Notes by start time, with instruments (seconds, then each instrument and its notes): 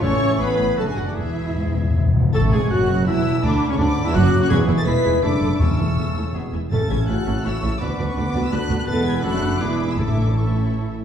0.02 double bass section A1, timpani A2, cello section A2, trombone section E3 A3, french horn section C#4, oboe A4, clarinet C#5, viola section C#5, violin section C#6
0.39 double bass section A1, cello section A2, french horn section B3, oboe G#4, clarinet B4, viola section B4, violin section B5
0.58 double bass section A1, cello section A2
0.77 double bass section F#1, cello section F#2, trombone section D3 A3, french horn section A3, oboe F#4, clarinet A4, viola section A4, violin section A5
0.86 french horn section G#3, clarinet G#4, viola section G#4, violin section G#5
0.96 double bass section F#1, cello section F#2, french horn section F#3, viola section F#4, clarinet F#4, violin section F#5
1.06 french horn section D3, clarinet D4, viola section D4, violin section D5
1.15 double bass section E1, cello section E2, timpani E2, trombone section B2 G#3, french horn section E3, clarinet E4, viola section E4, oboe G#4, violin section E5
1.25 timpani E2
1.33 timpani E2
1.41 timpani E2
1.50 timpani E2
1.56 double bass section E1, timpani E2, cello section G#2
1.66 timpani E2
1.74 double bass section E1, timpani E2, cello section E2
1.81 timpani E2
1.90 timpani E2
1.95 double bass section E1, timpani E2, cello section G#2
2.06 timpani E2
2.14 double bass section E1, timpani E2, cello section B2
2.22 timpani E2
2.33 double bass section A1, cello section A2, trombone section A3, violin section A4 A6, french horn section A4, viola section A4, clarinet A4, oboe A5, flute C#6
2.52 double bass section G#1, cello section G#2, trombone section G#3, clarinet G#4, violin section G#4 G#6, viola section G#4, french horn section G#4, oboe G#5
2.70 double bass section F#1, cello section F#2, trombone section F#3, violin section F#4 F#6, viola section F#4, clarinet F#4, french horn section F#4, oboe F#5
3.06 double bass section E1, cello section E2, trombone section E3, clarinet E4, viola section E4, french horn section E4, violin section E4 E6, oboe E5, flute A5
3.42 double bass section D2, cello section D2, trombone section D3, violin section D4 D6, clarinet D4, viola section D4, french horn section D4, oboe D5, flute B5
3.69 cello section C#2, trombone section C#3, clarinet C#4, violin section C#4 C#6, french horn section C#4, viola section C#4, oboe C#5
3.77 double bass section D2, cello section D2, trombone section D3, clarinet D4, violin section D4 D6, french horn section D4, viola section D4, oboe D5, flute B5
4.05 cello section E2, trombone section E3, clarinet E4, violin section E4 E6, french horn section E4, viola section E4, oboe E5
4.13 double bass section F#1, cello section F#2, trombone section F#3, clarinet F#4, violin section F#4 F#6, french horn section F#4, viola section F#4, oboe F#5, flute D6
4.41 cello section F#2, trombone section F#3, violin section F#4 F#6, clarinet F#4, viola section F#4, french horn section F#4, oboe F#5
4.49 double bass section E1, cello section E2, timpani E2, trombone section E3 G#3, viola section G#3 E4, clarinet E4, oboe G#4, french horn section G#4, violin section B4 E5 G#6, flute C#6
4.68 double bass section E1, cello section E2, viola section G#3 E4, violin section B4 E5
4.77 french horn section A4, violin section A6
4.86 double bass section E1, cello section E2, viola section G#3 E4, clarinet E4, oboe G#4, french horn section B4, violin section B4 E5 B6, flute B5
5.04 double bass section E1, cello section E2, viola section G#3 E4, violin section B4 E5
5.22 double bass section F#1, cello section F#2, trombone section D3 A3, viola section A3 A4, french horn section D4, clarinet D4, oboe A4, violin section A4 D5 D6
5.41 double bass section F#1, cello section F#2, viola section A3 A4, violin section A4 D5
5.59 double bass section E1, cello section E2, timpani E2, trombone section C#3, viola section A3 E4, clarinet C#4, french horn section E4, oboe A4, violin section A4 C#5 E6, flute C#6
5.78 double bass section E1, cello section E2, viola section A3 E4, violin section A4 C#5
5.97 double bass section E1, cello section E2, viola section A3 E4, violin section A4 C#5
6.15 double bass section E1, cello section E2, viola section A3 E4, violin section A4 C#5
6.34 double bass section E1, cello section E2, trombone section B2 G#3, clarinet B3, viola section B3 E4, violin section G#4 E5, oboe G#4
6.53 double bass section E1, cello section E2, viola section B3 E4, violin section G#4 E5
6.71 double bass section A1, timpani A2, cello section A2, trombone section C#3 A3, viola section C#4 E4, clarinet C#4, french horn section A4, violin section A4 E5 A6, oboe A4, flute A5
6.90 double bass section A1, cello section A2, viola section C#4 E4, french horn section G#4, violin section A4 E5 G#6
7.07 double bass section A1, cello section A2, viola section C#4 E4, french horn section F#4, violin section A4 E5 F#6
7.26 double bass section A1, cello section A2, viola section C#4 E4, violin section A4 E5
7.44 double bass section A1, cello section A2, trombone section C#3 A3, clarinet A3, viola section C#4 E4, french horn section E4, violin section A4 E5 E6, flute C#6
7.62 double bass section A1, cello section A2, viola section C#4 E4, violin section A4 E5
7.80 double bass section D2, cello section D2, trombone section D3 B3, viola section B3 F#4, clarinet B3, french horn section D4, violin section B4 D5 D6, oboe B4, flute B5
7.99 double bass section D2, cello section D2, viola section B3 F#4, violin section B4 D5
8.07 french horn section C#4, violin section C#6
8.16 double bass section D2, cello section D2, trombone section D3 B3, viola section B3 F#4, french horn section D4, violin section B4 D5 D6
8.34 double bass section D2, cello section D2, viola section B3 F#4, violin section B4 D5
8.43 french horn section E4, violin section E6
8.51 double bass section D2, cello section D2, trombone section D3 B3, viola section B3 F#4, clarinet D4, french horn section F#4, violin section B4 D5 F#6, oboe B4
8.69 double bass section D2, cello section D2, viola section B3 F#4, violin section B4 D5
8.79 french horn section F#4, violin section F#6
8.86 double bass section E1, cello section E2, trombone section B2 B3, clarinet B3, viola section B3 E4, french horn section A4, violin section B4 A6, oboe B4, flute B5
9.06 french horn section G#4, violin section G#6
9.22 double bass section F#1, cello section F#2, trombone section D3 A3, viola section A3 D4, clarinet D4, violin section F#4 D5 F#6, french horn section F#4, oboe A4
9.59 double bass section E1, cello section E2, trombone section E3 G#3, viola section B3 E4, french horn section D4, clarinet E4, violin section G#4 E5 D6, oboe G#4
9.89 french horn section E4, violin section E6
9.98 double bass section A1, timpani A2, cello section A2, trombone section E3 A3, viola section A3 E4, french horn section D4, clarinet E4, oboe A4, violin section A4 E5 D6, flute A5
10.38 trombone section E3 A3, viola section A3 E4, french horn section C#4, clarinet E4, violin section A4 E5 C#6, oboe A4